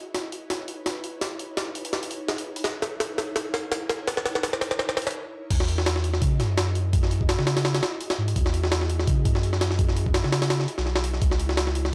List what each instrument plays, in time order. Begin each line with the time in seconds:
Already playing: ambient pad D#4 E4 B4 C#5
0.15 snare, open hi-hat
0.32 open hi-hat
0.50 snare, open hi-hat
0.68 open hi-hat
0.86 snare, open hi-hat
1.04 open hi-hat
1.21 snare, open hi-hat
1.39 open hi-hat
1.57 snare, open hi-hat
1.75 open hi-hat
1.85 open hi-hat
1.93 snare, open hi-hat
2.03 open hi-hat
2.11 open hi-hat
2.28 snare, open hi-hat
2.38 open hi-hat
2.56 open hi-hat
2.64 ambient pad A#4, snare, open hi-hat
2.82 snare, open hi-hat
3.00 snare, open hi-hat
3.18 snare, open hi-hat
3.36 snare, open hi-hat
3.54 snare, open hi-hat
3.72 snare, open hi-hat
3.90 snare, open hi-hat
4.08 snare, open hi-hat
4.17 snare
4.25 snare, open hi-hat
4.35 snare
4.43 snare, open hi-hat
4.53 snare
4.61 snare, open hi-hat
4.71 snare
4.79 snare
4.89 snare
4.97 snare, open hi-hat
5.02 open hi-hat
5.07 snare, open hi-hat
5.11 open hi-hat
5.50 sub bass E2, ambient pad E4 F#4 G#4 D#5, kick, open hi-hat, crash
5.60 snare
5.68 open hi-hat
5.78 snare
5.86 snare, open hi-hat
5.96 snare
6.04 open hi-hat
6.14 snare
6.22 sub bass C#3, kick, open hi-hat
6.40 sub bass F#2, snare, open hi-hat
6.58 snare, open hi-hat
6.75 open hi-hat
6.93 kick, open hi-hat
7.03 snare
7.11 open hi-hat
7.21 kick
7.29 snare, open hi-hat
7.39 sub bass C#3, snare
7.47 snare, open hi-hat
7.57 snare, open hi-hat
7.65 snare, open hi-hat
7.75 snare, open hi-hat
7.83 snare, open hi-hat
8.01 open hi-hat
8.10 snare, open hi-hat
8.18 sub bass G#2
8.28 open hi-hat
8.36 sub bass E2, kick, open hi-hat
8.46 snare
8.54 open hi-hat
8.64 snare
8.72 snare, open hi-hat
8.82 snare
8.90 open hi-hat
8.99 snare
9.07 sub bass C#3, kick, open hi-hat
9.25 sub bass F#2, kick, open hi-hat
9.35 snare
9.43 open hi-hat
9.53 snare
9.61 snare, open hi-hat
9.71 snare
9.79 kick, open hi-hat
9.89 snare
9.97 open hi-hat
10.06 kick
10.14 snare, open hi-hat
10.24 sub bass C#3, snare
10.32 snare, open hi-hat
10.42 snare, open hi-hat
10.50 snare, open hi-hat
10.60 snare
10.68 open hi-hat
10.78 sub bass B1, snare
10.86 snare
10.96 snare
11.04 open hi-hat
11.14 snare
11.22 sub bass C#2, ambient pad D#4 B4 C#5, kick, open hi-hat
11.31 snare
11.40 open hi-hat
11.49 snare
11.57 snare, open hi-hat
11.67 snare
11.75 open hi-hat
11.85 snare